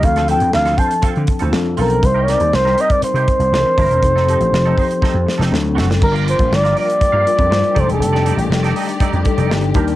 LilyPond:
<<
  \new Staff \with { instrumentName = "Flugelhorn" } { \time 4/4 \key f \mixolydian \tempo 4 = 120 f''8 g''8 f''8 a''8 r4. bes'8 | c''16. des''32 d''8 c''8 ees''16 d''16 c''2~ | c''2. r4 | bes'8 c''8 d''8 d''2 c''16 a'16~ |
a'8. r2. r16 | }
  \new Staff \with { instrumentName = "Clean electric guitar" } { \time 4/4 \key f \mixolydian r16 <c' f' a'>16 <c' f' a'>16 r8 <c' f' a'>16 <c' f' c''>16 r16 <c' f' a'>16 r8 <c' f' a'>16 r8 <c' f' a'>16 r16 | r16 <ees' g' bes'>16 <ees' g' bes'>16 r8 <ees' g' bes'>16 <ees' g' bes'>16 r8 <ees' g' c''>16 r4 <d' e' bes'>16 <d' e' bes'>16 | r16 <c' ees' a'>16 <c' ees' a'>16 r8 <c' ees' a'>16 <c' ees' c''>16 r16 <c' ees' a'>16 r8 <c' ees' a'>16 r8 <c' fis' a'>16 r16 | r16 <f' bes' d''>16 <f' bes' d''>16 r8 <f' bes' d''>16 <f' bes' d''>16 r8 <f' bes' f''>16 r4 <ees' a' d''>16 <ees' a' d''>16 |
r16 <ees' a' d''>16 <ees' a' d''>16 r8 <ees' a' d''>16 <ees' a' ees''>16 r16 <ees' a' d''>16 r8 <ees' a' d''>16 r8 <d' g' bes'>16 r16 | }
  \new Staff \with { instrumentName = "Tine electric piano" } { \time 4/4 \key f \mixolydian <f c' d' a'>8 <f c' d' a'>2 r8 <f c' d' a'>4 | <g c' ees' bes'>8 <g c' ees' bes' c''>2 r8 <e c' d' a' bes'>4 | <f c' ees' a'>8 <f c' ees' g'>2 r8 <fis c' d' a'>4 | <g d' f' bes'>2 r8 <g d' f' bes'>8 <g d' f' c''>8 <g d' ees' a'>8~ |
<g d' ees' a'>4. r4 <g d' ees' a'>8 <g d' ees' g'>8 <g d' ees' bes'>8 | }
  \new Staff \with { instrumentName = "String section" } { \time 4/4 \key f \mixolydian << { r1 | r1 | r1 | <f bes>2.~ <f bes>8 <ees a d''>8~ |
<ees a d''>2.~ <ees a d''>8 <ees d''>8 | } \\ { r1 | r1 | r1 | g'1~ |
g'1 | } >> }
  \new Staff \with { instrumentName = "Slap bass" } { \clef bass \time 4/4 \key f \mixolydian d,8. f,16 d,8 r8. d16 r16 d,16 f,8 b,,8 | c,8. ees,16 c,8 r8. c16 r16 c,16 c,16 r16 g,,16 e,,16 | f,,8. a,,16 f,,8 r8. f,16 r16 f,,16 d,8 fis,,8 | g,,8. bes,,16 g,,8 r8. g,16 r16 f,16 g,16 r16 f,,16 e,,16 |
f,,8. a,,16 f,,8 r8. f,16 r16 f,,16 g,,8 ees,8 | }
  \new DrumStaff \with { instrumentName = "Drums" } \drummode { \time 4/4 <hh bd>16 <hh sn>16 hh16 hh16 sn16 <hh sn>16 <hh bd>16 hh16 <hh bd>16 hh16 <hh bd>16 hh16 sn8 hho16 hh16 | <hh bd>8 <hh sn>16 hh16 sn16 sn16 hh16 <hh bd>16 hh16 hh16 <hh bd>16 hh16 sn8 <hho bd>16 hh16 | <hh bd>16 sn16 hh16 hh16 sn8 <hho bd>16 hh16 <bd sn>8 sn16 sn16 sn8 sn16 sn16 | <cymc bd>16 hh16 hh16 <hh bd>16 sn16 <hh sn>16 hho16 hh16 <hh bd>8 hh16 <hh bd>16 sn16 hh16 <hh bd>16 hh16 |
hh16 sn16 hh16 hh16 sn16 <hh sn>16 hho16 hh16 <hh bd>16 hh16 <hh bd>16 hh16 sn16 hh16 <hh bd>16 hh16 | }
>>